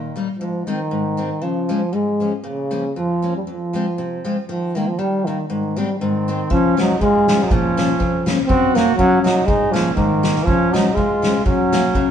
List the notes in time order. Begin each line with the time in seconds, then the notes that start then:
Already playing: A#2 D#3
0.16 G3 A#3 D#4
0.39 G#2 F3
0.66 D#3 G#3 C4
0.91 G#2
1.17 D#3 G#3 C4
1.41 C#3 F3
1.69 F3 G#3 C#4
1.93 G#2 G#3
2.20 F3 G#3 C#4
2.44 A#2 C#3
2.71 F3 A#3 C#4
2.96 F2 F3
3.22 F3 A#3 C#4
3.37 G3
3.47 F2 F3
3.73 F3 G#3 C4
3.98 C3
4.25 F3 G#3 C4
4.48 D#3 F3
4.75 D#3 G#3 A#3
4.87 F3
4.99 D#3 G3
5.25 D#3 G3 A#3
5.49 G#2 D#3
5.76 D#3 G3 G#3 C4
5.99 G#2 D#3 C4
6.28 D#3 G#3 C4
6.50 C#3 F3 C#4, kick
6.77 F3 F#3 G#3 C#4, snare
6.81 D#4
6.99 G#2 G#3 F4, kick
7.28 F3 G#3 C#4, snare
7.43 F#3 D#4
7.51 A#2 F3 C#4, kick
7.77 F3 A#3 C#4, snare
8.00 F2, kick
8.26 F3 A#3 C#4, snare
8.46 F#2 C4 F#4, kick
8.75 F#3 A#3 C#4 F#4, snare
8.96 C#3 F#3 C#4, kick
9.22 F#3 A#3 D#4
9.26 C#4, snare
9.46 G#2 G#3 D#4, kick
9.72 F3 G#3 A#3 C#4 D#4, snare
9.95 G#2 D#3 A#3, kick
10.23 G#3 A#3 D#4, snare
10.35 snare
10.43 F3 C#4, kick
10.48 C#3
10.71 F3 F#3 G#3 C#4 D#4, snare
10.93 G#3 F4, kick
10.97 G#2
11.22 F3 G#3 C#4, snare
11.44 F#2 F#3 C#4, kick
11.72 F#3 A#3 C#4, snare
11.95 C#3, kick